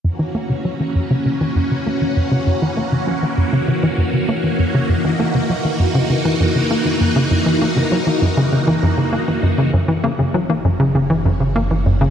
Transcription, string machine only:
\new Staff \with { instrumentName = "String machine" } { \time 4/4 \key fis \mixolydian \tempo 4 = 99 << { <e ais fis'>1~ | <e ais fis'>1~ | <e ais fis'>1~ | <e ais fis'>1 |
<e ais fis'>1 | } \\ { cis'1~ | cis'1 | dis'1~ | dis'1 |
cis'1 | } >> }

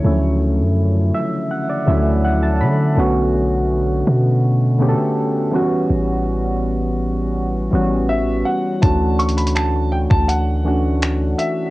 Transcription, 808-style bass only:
\new Staff \with { instrumentName = "808-style bass" } { \clef bass \time 4/4 \key d \major \tempo 4 = 82 d,8. fis,8. r4 d,4 d8 | b,,4. b,4~ b,16 r4 r16 | a,,2~ a,,8 a,,4 r8 | d,4.~ d,16 d,4.~ d,16 r8 | }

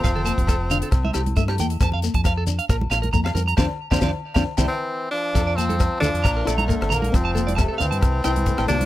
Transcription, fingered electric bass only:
\new Staff \with { instrumentName = "Fingered electric bass" } { \clef bass \time 4/4 \key f \major \tempo 4 = 135 f,,8. f,,4~ f,,16 c,8 c,8 g,8 e,8 | f,8. f,4~ f,16 bes,,8 bes,,8 f,8 f,8 | f,16 r8 f,16 f,16 r8 f,16 r16 c,16 r4. | f,4. d,16 f,16 bes,,8 bes,,8. g,,16 bes,,8 |
f,,4. d,16 g,16 c,8 c,8. a,,16 c,8 | }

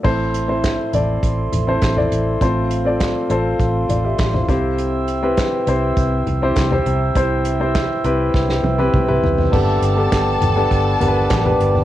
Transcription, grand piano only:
<<
  \new Staff \with { instrumentName = "Grand piano" } { \time 4/4 \key g \mixolydian \tempo 4 = 101 << { r1 | r2 r8 <f' d''>16 <g' e''>8 <e' c''>8 r16 | r1 | r1 |
r1 | } \\ { <c' e' a' c''>8. <c' e' a' c''>8. <c' e' a' d''>4~ <c' e' a' d''>16 <c' e' a' c''>8 <c' e' a' d''>8. | <c' f' a' c''>8. <c' f' a' d''>8. <c' f' a' c''>4~ <c' f' a' c''>16 r8. <c' e' g' c''>8~ | <c' e' g' c''>8. <c' e' g' b'>8. <c' e' g' c''>4~ <c' e' g' c''>16 <c' e' g' c''>8 <c' e' g' c''>8. | <c' e' g' c''>8. <c' e' g' c''>8. <c' e' g' b'>4~ <c' e' g' b'>16 <c' e' g' b'>8 <c' e' g' b'>8. |
<b d' g' a'>8. <b d' g' a'>4 <b d' g' a'>8. <b d' g' bes' b'>8. <b d' g' b'>8. | } >> }
  \new Staff \with { instrumentName = "Grand piano" } { \clef bass \time 4/4 \key g \mixolydian a,4. r2 r8 | a,4. r2 c8~ | c4 r2 r8 c8~ | c4 r2. |
g,4. r2 r8 | }
>>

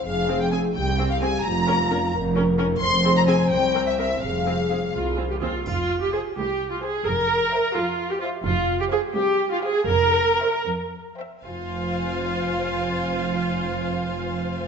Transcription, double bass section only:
\new Staff \with { instrumentName = "Double bass section" } { \clef bass \time 6/8 \key f \minor \tempo 4. = 85 f,,4. c,4. | f,,4. f,,4. | f,,4. c,4. | f,,4. c,4. |
f,,4 r2 | f,,4 r2 | f,,4 r2 | f,,4 r2 |
f,,2.~ | f,,2. | }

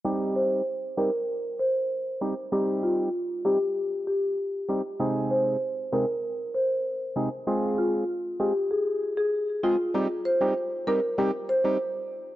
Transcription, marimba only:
\new Staff \with { instrumentName = "Marimba" } { \time 4/4 \key c \minor \tempo 4 = 97 r8 c''16 r8. bes'16 r8. c''16 r4 r16 | r8 f'16 r8. g'16 r8. g'16 r4 r16 | r8 c''16 r8. bes'16 r8. c''16 r4 r16 | r8 f'16 r8. g'16 r16 aes'16 r8 aes'16 r8 f'16 r16 |
r8 c''16 r8. bes'16 r8. c''16 r4 r16 | }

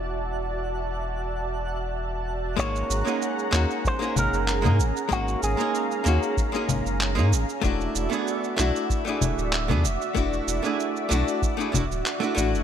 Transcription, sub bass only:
\new Staff \with { instrumentName = "Sub bass" } { \clef bass \time 4/4 \key gis \phrygian \tempo 4 = 95 e,,1 | gis,,8 gis,,16 r8. dis,16 r8. gis,,16 fis,,8 gis,16 gis,,16 r16 | gis,,8 gis,,16 r8. dis,16 r8. gis,,16 fis,,8 gis,16 gis,,16 r16 | e,,8 e,,16 r8. b,,16 r8. e,,16 d,,8 e,16 e,,16 r16 |
e,,8 e,,16 r8. b,,16 r8. e,,16 d,,16 r8 a,,16 e,,16 | }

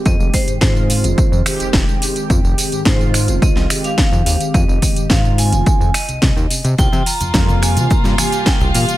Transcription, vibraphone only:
\new Staff \with { instrumentName = "Vibraphone" } { \time 4/4 \key f \minor \tempo 4 = 107 ees''8 c''8 c''2 r4 | r4 c''4 ees''8. f''8. f''8 | ees''8 ees''8 f''8 aes''4 ees''4. | g''8 bes''4 aes''8 bes''8 aes''8 g''8 f''8 | }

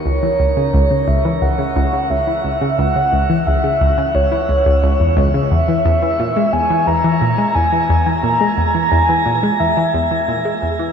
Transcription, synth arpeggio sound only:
\new Staff \with { instrumentName = "Synth arpeggio sound" } { \clef bass \time 4/4 \key e \lydian \tempo 4 = 88 cis,16 e16 cis,16 cis16 cis,16 cis16 cis,16 e16 cis,16 cis16 cis,16 cis16 cis,16 e16 cis,16 cis16 | cis,16 cis16 cis,16 e16 cis,16 cis16 cis,16 cis16 cis,16 e16 cis,16 cis,16 cis,16 e,16 cis,16 cis16 | e,16 e16 e,16 e16 ais,16 gis16 e,16 e16 e,16 e16 ais,16 gis16 e,16 e16 e,16 e16 | ais,16 gis16 e,16 e16 e,16 e16 ais,16 gis16 e,16 e16 e,16 e16 ais,16 gis16 e,16 e16 | }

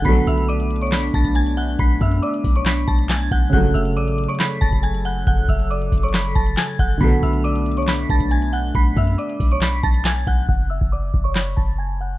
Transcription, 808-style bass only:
\new Staff \with { instrumentName = "808-style bass" } { \clef bass \time 4/4 \key b \dorian \tempo 4 = 138 b,,8 b,,2 b,,4. | b,,8 fis,8 r8 b,,4 b,,4 b,,8 | fis,,8 fis,,8 a,,8. r8. fis,,4. | fis,,8 fis,,4 fis,,4 fis,,8 r8 fis,,8 |
b,,8 b,,2 b,,4. | b,,8 fis,8 r8 b,,4 b,,4 b,,8 | fis,,8. fis,,8. fis,,4 fis,,4. | }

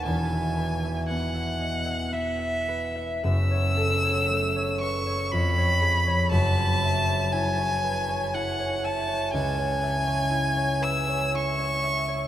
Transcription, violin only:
\new Staff \with { instrumentName = "Violin" } { \time 3/4 \key fis \dorian \tempo 4 = 59 gis''4 fis''4 e''4 | e'''4. cis'''8 b''4 | a''4 gis''4 fis''8 a''8 | \key cis \minor gis''4. e'''8 cis'''4 | }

